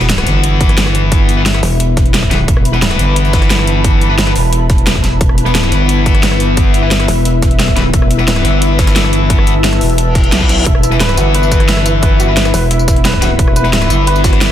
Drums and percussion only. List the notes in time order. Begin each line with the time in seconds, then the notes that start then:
0.01 closed hi-hat
0.10 snare, closed hi-hat
0.18 cross-stick, snare, closed hi-hat
0.27 snare, closed hi-hat
0.44 closed hi-hat
0.61 kick, closed hi-hat
0.69 cross-stick, closed hi-hat
0.78 snare, closed hi-hat
0.86 cross-stick, snare
0.95 closed hi-hat
1.12 kick, closed hi-hat
1.29 closed hi-hat
1.46 snare, closed hi-hat
1.54 cross-stick, closed hi-hat
1.63 open hi-hat
1.80 closed hi-hat
1.97 kick, snare, closed hi-hat
2.06 closed hi-hat
2.14 snare, closed hi-hat
2.23 kick, snare
2.31 snare, closed hi-hat
2.48 kick, closed hi-hat
2.57 cross-stick
2.65 closed hi-hat
2.74 closed hi-hat
2.82 snare, closed hi-hat
2.91 cross-stick, snare, closed hi-hat
2.99 closed hi-hat
3.16 closed hi-hat
3.25 closed hi-hat
3.33 kick, snare, closed hi-hat
3.42 cross-stick, snare, closed hi-hat
3.50 snare, closed hi-hat
3.59 cross-stick, snare
3.67 closed hi-hat
3.84 kick, closed hi-hat
4.01 closed hi-hat
4.18 snare, closed hi-hat
4.27 cross-stick, closed hi-hat
4.36 snare, open hi-hat
4.53 closed hi-hat
4.70 kick, snare, closed hi-hat
4.78 closed hi-hat
4.87 snare, closed hi-hat
4.95 kick, snare
5.04 snare, closed hi-hat
5.21 kick, closed hi-hat
5.29 cross-stick
5.38 closed hi-hat
5.46 closed hi-hat
5.55 snare, closed hi-hat
5.63 cross-stick, snare, closed hi-hat
5.72 snare, closed hi-hat
5.89 closed hi-hat
6.06 kick, closed hi-hat
6.15 cross-stick, closed hi-hat
6.23 snare, closed hi-hat
6.32 cross-stick, snare
6.40 closed hi-hat
6.57 kick, closed hi-hat
6.74 closed hi-hat
6.91 snare, closed hi-hat
7.00 cross-stick, closed hi-hat
7.08 open hi-hat
7.25 closed hi-hat
7.42 kick, snare, closed hi-hat
7.51 closed hi-hat
7.59 snare, closed hi-hat
7.68 kick, snare
7.76 snare, closed hi-hat
7.94 kick, closed hi-hat
8.02 cross-stick
8.11 closed hi-hat
8.19 closed hi-hat
8.28 snare, closed hi-hat
8.36 cross-stick, snare, closed hi-hat
8.45 snare, closed hi-hat
8.62 closed hi-hat
8.79 kick, snare, closed hi-hat
8.87 cross-stick, snare, closed hi-hat
8.96 snare, closed hi-hat
9.04 cross-stick, snare
9.13 closed hi-hat
9.30 kick, closed hi-hat
9.39 cross-stick
9.47 closed hi-hat
9.64 snare, closed hi-hat
9.73 cross-stick, closed hi-hat
9.81 open hi-hat
9.90 closed hi-hat
9.98 closed hi-hat
10.15 kick, snare, closed hi-hat
10.24 closed hi-hat
10.32 snare, closed hi-hat
10.41 kick, snare
10.49 snare, closed hi-hat
10.66 kick, closed hi-hat
10.75 cross-stick
10.83 closed hi-hat, tambourine
10.92 closed hi-hat
11.00 snare, closed hi-hat
11.09 cross-stick, snare, closed hi-hat, tambourine
11.17 snare, closed hi-hat, tambourine
11.35 closed hi-hat
11.43 tambourine
11.52 kick, closed hi-hat, tambourine
11.60 cross-stick, closed hi-hat
11.69 snare, closed hi-hat
11.77 cross-stick, snare
11.86 closed hi-hat, tambourine
12.03 kick, closed hi-hat
12.20 closed hi-hat, tambourine
12.37 snare, closed hi-hat
12.45 cross-stick, closed hi-hat, tambourine
12.54 open hi-hat, tambourine
12.71 closed hi-hat
12.79 tambourine
12.88 kick, snare, closed hi-hat, tambourine
12.96 closed hi-hat
13.05 snare, closed hi-hat
13.13 kick, snare
13.22 snare, closed hi-hat, tambourine
13.39 kick, closed hi-hat
13.48 cross-stick
13.56 closed hi-hat, tambourine
13.65 closed hi-hat
13.73 snare, closed hi-hat
13.82 cross-stick, snare, closed hi-hat, tambourine
13.90 closed hi-hat, tambourine
14.07 closed hi-hat
14.16 closed hi-hat, tambourine
14.24 kick, snare, closed hi-hat, tambourine
14.33 cross-stick, snare, closed hi-hat
14.41 snare, closed hi-hat